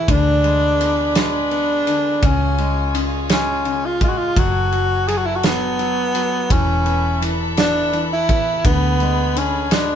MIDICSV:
0, 0, Header, 1, 6, 480
1, 0, Start_track
1, 0, Key_signature, 3, "minor"
1, 0, Tempo, 713436
1, 57, Time_signature, 6, 3, 24, 8
1, 6696, End_track
2, 0, Start_track
2, 0, Title_t, "String section"
2, 0, Program_c, 0, 48
2, 0, Note_on_c, 0, 68, 74
2, 56, Note_on_c, 0, 74, 73
2, 56, Note_on_c, 0, 83, 81
2, 58, Note_on_c, 0, 71, 66
2, 1482, Note_off_c, 0, 74, 0
2, 1482, Note_off_c, 0, 83, 0
2, 1483, Note_off_c, 0, 71, 0
2, 1501, Note_on_c, 0, 65, 74
2, 1501, Note_on_c, 0, 80, 81
2, 1502, Note_on_c, 0, 73, 63
2, 2909, Note_off_c, 0, 68, 0
2, 2922, Note_off_c, 0, 73, 0
2, 2925, Note_off_c, 0, 65, 0
2, 2930, Note_on_c, 0, 66, 76
2, 2930, Note_on_c, 0, 69, 66
2, 2930, Note_on_c, 0, 73, 65
2, 4352, Note_off_c, 0, 80, 0
2, 4359, Note_off_c, 0, 66, 0
2, 4359, Note_off_c, 0, 69, 0
2, 4359, Note_off_c, 0, 73, 0
2, 4368, Note_on_c, 0, 76, 67
2, 4369, Note_on_c, 0, 69, 80
2, 4371, Note_on_c, 0, 71, 66
2, 4371, Note_on_c, 0, 83, 88
2, 5798, Note_off_c, 0, 69, 0
2, 5798, Note_off_c, 0, 76, 0
2, 5819, Note_on_c, 0, 68, 74
2, 6696, Note_off_c, 0, 68, 0
2, 6696, Note_off_c, 0, 71, 0
2, 6696, Note_off_c, 0, 83, 0
2, 6696, End_track
3, 0, Start_track
3, 0, Title_t, "Tenor saxophone"
3, 0, Program_c, 1, 66
3, 0, Note_on_c, 1, 64, 103
3, 75, Note_on_c, 1, 62, 106
3, 85, Note_off_c, 1, 64, 0
3, 786, Note_off_c, 1, 62, 0
3, 799, Note_on_c, 1, 62, 103
3, 1520, Note_on_c, 1, 61, 97
3, 1531, Note_off_c, 1, 62, 0
3, 2047, Note_off_c, 1, 61, 0
3, 2238, Note_on_c, 1, 61, 90
3, 2595, Note_on_c, 1, 65, 86
3, 2605, Note_off_c, 1, 61, 0
3, 2706, Note_off_c, 1, 65, 0
3, 2718, Note_on_c, 1, 65, 91
3, 2753, Note_on_c, 1, 66, 80
3, 2763, Note_off_c, 1, 65, 0
3, 2812, Note_on_c, 1, 65, 96
3, 2822, Note_off_c, 1, 66, 0
3, 2957, Note_on_c, 1, 66, 102
3, 2967, Note_off_c, 1, 65, 0
3, 3416, Note_on_c, 1, 68, 92
3, 3426, Note_off_c, 1, 66, 0
3, 3482, Note_on_c, 1, 66, 86
3, 3492, Note_off_c, 1, 68, 0
3, 3537, Note_on_c, 1, 64, 84
3, 3547, Note_off_c, 1, 66, 0
3, 3603, Note_on_c, 1, 66, 82
3, 3613, Note_off_c, 1, 64, 0
3, 3668, Note_on_c, 1, 59, 92
3, 3678, Note_off_c, 1, 66, 0
3, 4388, Note_on_c, 1, 61, 94
3, 4399, Note_off_c, 1, 59, 0
3, 4921, Note_off_c, 1, 61, 0
3, 5106, Note_on_c, 1, 62, 91
3, 5437, Note_off_c, 1, 62, 0
3, 5471, Note_on_c, 1, 64, 104
3, 5827, Note_on_c, 1, 59, 98
3, 5837, Note_off_c, 1, 64, 0
3, 6313, Note_on_c, 1, 61, 88
3, 6323, Note_off_c, 1, 59, 0
3, 6551, Note_on_c, 1, 62, 96
3, 6561, Note_off_c, 1, 61, 0
3, 6696, Note_off_c, 1, 62, 0
3, 6696, End_track
4, 0, Start_track
4, 0, Title_t, "Grand piano"
4, 0, Program_c, 2, 0
4, 0, Control_c, 2, 64, 127
4, 0, Note_on_c, 2, 52, 59
4, 53, Note_on_c, 2, 50, 74
4, 65, Control_c, 2, 64, 0
4, 70, Note_off_c, 2, 52, 0
4, 172, Control_c, 2, 64, 127
4, 296, Note_on_c, 2, 56, 52
4, 539, Note_on_c, 2, 59, 56
4, 768, Note_off_c, 2, 56, 0
4, 778, Note_on_c, 2, 56, 60
4, 1007, Note_off_c, 2, 59, 0
4, 1017, Note_on_c, 2, 59, 64
4, 1245, Note_off_c, 2, 50, 0
4, 1256, Note_on_c, 2, 50, 58
4, 1476, Note_off_c, 2, 56, 0
4, 1483, Note_off_c, 2, 59, 0
4, 1489, Note_off_c, 2, 50, 0
4, 1499, Note_on_c, 2, 49, 67
4, 1505, Control_c, 2, 64, 0
4, 1616, Control_c, 2, 64, 127
4, 1739, Note_on_c, 2, 56, 54
4, 1969, Note_off_c, 2, 49, 0
4, 1980, Note_on_c, 2, 49, 58
4, 2208, Note_off_c, 2, 56, 0
4, 2218, Note_on_c, 2, 56, 57
4, 2448, Note_off_c, 2, 49, 0
4, 2458, Note_on_c, 2, 49, 57
4, 2686, Note_off_c, 2, 56, 0
4, 2697, Note_on_c, 2, 56, 59
4, 2923, Note_off_c, 2, 49, 0
4, 2930, Note_off_c, 2, 56, 0
4, 2936, Note_on_c, 2, 54, 67
4, 2946, Control_c, 2, 64, 0
4, 3082, Control_c, 2, 64, 127
4, 3169, Note_off_c, 2, 54, 0
4, 3179, Note_on_c, 2, 54, 53
4, 3410, Note_off_c, 2, 54, 0
4, 3420, Note_on_c, 2, 54, 53
4, 3651, Note_off_c, 2, 54, 0
4, 3661, Note_on_c, 2, 54, 58
4, 3888, Note_off_c, 2, 54, 0
4, 3898, Note_on_c, 2, 54, 60
4, 4129, Note_off_c, 2, 54, 0
4, 4139, Note_on_c, 2, 54, 59
4, 4371, Note_off_c, 2, 54, 0
4, 4376, Note_on_c, 2, 52, 70
4, 4386, Control_c, 2, 64, 0
4, 4520, Control_c, 2, 64, 127
4, 4611, Note_on_c, 2, 59, 50
4, 4844, Note_off_c, 2, 52, 0
4, 4854, Note_on_c, 2, 52, 59
4, 5084, Note_off_c, 2, 59, 0
4, 5094, Note_on_c, 2, 59, 61
4, 5324, Note_off_c, 2, 52, 0
4, 5334, Note_on_c, 2, 52, 61
4, 5565, Note_off_c, 2, 59, 0
4, 5575, Note_on_c, 2, 59, 60
4, 5801, Note_off_c, 2, 52, 0
4, 5809, Note_off_c, 2, 59, 0
4, 5817, Note_on_c, 2, 50, 70
4, 5826, Control_c, 2, 64, 0
4, 5943, Control_c, 2, 64, 127
4, 6057, Note_on_c, 2, 56, 53
4, 6281, Note_off_c, 2, 50, 0
4, 6291, Note_on_c, 2, 50, 57
4, 6527, Note_off_c, 2, 56, 0
4, 6537, Note_on_c, 2, 56, 59
4, 6696, Note_off_c, 2, 50, 0
4, 6696, Note_off_c, 2, 56, 0
4, 6696, End_track
5, 0, Start_track
5, 0, Title_t, "Fingered electric bass"
5, 0, Program_c, 3, 33
5, 56, Note_on_c, 3, 38, 105
5, 1470, Note_off_c, 3, 38, 0
5, 1500, Note_on_c, 3, 37, 103
5, 2911, Note_off_c, 3, 37, 0
5, 2939, Note_on_c, 3, 30, 91
5, 4351, Note_off_c, 3, 30, 0
5, 4376, Note_on_c, 3, 28, 101
5, 5790, Note_off_c, 3, 28, 0
5, 5820, Note_on_c, 3, 38, 102
5, 6696, Note_off_c, 3, 38, 0
5, 6696, End_track
6, 0, Start_track
6, 0, Title_t, "Drums"
6, 56, Note_on_c, 9, 36, 110
6, 56, Note_on_c, 9, 51, 80
6, 123, Note_off_c, 9, 36, 0
6, 123, Note_off_c, 9, 51, 0
6, 296, Note_on_c, 9, 51, 41
6, 364, Note_off_c, 9, 51, 0
6, 542, Note_on_c, 9, 51, 60
6, 609, Note_off_c, 9, 51, 0
6, 775, Note_on_c, 9, 51, 69
6, 781, Note_on_c, 9, 38, 108
6, 842, Note_off_c, 9, 51, 0
6, 848, Note_off_c, 9, 38, 0
6, 1018, Note_on_c, 9, 51, 44
6, 1085, Note_off_c, 9, 51, 0
6, 1258, Note_on_c, 9, 51, 56
6, 1326, Note_off_c, 9, 51, 0
6, 1498, Note_on_c, 9, 36, 99
6, 1498, Note_on_c, 9, 51, 74
6, 1565, Note_off_c, 9, 36, 0
6, 1565, Note_off_c, 9, 51, 0
6, 1738, Note_on_c, 9, 51, 39
6, 1805, Note_off_c, 9, 51, 0
6, 1982, Note_on_c, 9, 51, 60
6, 2049, Note_off_c, 9, 51, 0
6, 2216, Note_on_c, 9, 51, 73
6, 2222, Note_on_c, 9, 38, 108
6, 2284, Note_off_c, 9, 51, 0
6, 2289, Note_off_c, 9, 38, 0
6, 2457, Note_on_c, 9, 51, 41
6, 2525, Note_off_c, 9, 51, 0
6, 2698, Note_on_c, 9, 36, 86
6, 2698, Note_on_c, 9, 51, 51
6, 2765, Note_off_c, 9, 36, 0
6, 2765, Note_off_c, 9, 51, 0
6, 2937, Note_on_c, 9, 36, 108
6, 2938, Note_on_c, 9, 51, 75
6, 3004, Note_off_c, 9, 36, 0
6, 3006, Note_off_c, 9, 51, 0
6, 3179, Note_on_c, 9, 51, 38
6, 3246, Note_off_c, 9, 51, 0
6, 3420, Note_on_c, 9, 51, 59
6, 3487, Note_off_c, 9, 51, 0
6, 3656, Note_on_c, 9, 51, 70
6, 3661, Note_on_c, 9, 38, 106
6, 3723, Note_off_c, 9, 51, 0
6, 3729, Note_off_c, 9, 38, 0
6, 3896, Note_on_c, 9, 51, 44
6, 3963, Note_off_c, 9, 51, 0
6, 4136, Note_on_c, 9, 51, 54
6, 4203, Note_off_c, 9, 51, 0
6, 4376, Note_on_c, 9, 36, 109
6, 4376, Note_on_c, 9, 51, 75
6, 4443, Note_off_c, 9, 36, 0
6, 4444, Note_off_c, 9, 51, 0
6, 4614, Note_on_c, 9, 51, 40
6, 4681, Note_off_c, 9, 51, 0
6, 4860, Note_on_c, 9, 51, 61
6, 4927, Note_off_c, 9, 51, 0
6, 5095, Note_on_c, 9, 51, 69
6, 5100, Note_on_c, 9, 38, 111
6, 5162, Note_off_c, 9, 51, 0
6, 5168, Note_off_c, 9, 38, 0
6, 5337, Note_on_c, 9, 51, 44
6, 5404, Note_off_c, 9, 51, 0
6, 5576, Note_on_c, 9, 51, 55
6, 5578, Note_on_c, 9, 36, 88
6, 5644, Note_off_c, 9, 51, 0
6, 5645, Note_off_c, 9, 36, 0
6, 5816, Note_on_c, 9, 51, 76
6, 5818, Note_on_c, 9, 36, 106
6, 5884, Note_off_c, 9, 51, 0
6, 5885, Note_off_c, 9, 36, 0
6, 6056, Note_on_c, 9, 51, 40
6, 6123, Note_off_c, 9, 51, 0
6, 6301, Note_on_c, 9, 51, 60
6, 6368, Note_off_c, 9, 51, 0
6, 6533, Note_on_c, 9, 51, 78
6, 6539, Note_on_c, 9, 38, 105
6, 6601, Note_off_c, 9, 51, 0
6, 6606, Note_off_c, 9, 38, 0
6, 6696, End_track
0, 0, End_of_file